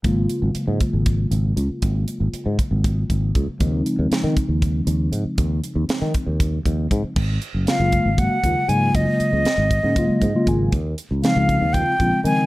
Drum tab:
CC |-------|-------|-------|-------|
HH |xxxxxxx|xxxxxxx|xxxxxxx|xxxxxxx|
SD |-------|-------|--o----|--o----|
BD |o--oo--|o--oooo|o--oo--|o--oooo|

CC |x------|-------|-------|
HH |-xxxxxx|xxxxxxx|xxxxxxx|
SD |--o----|--o----|--o----|
BD |o--ooo-|o--oooo|o--ooo-|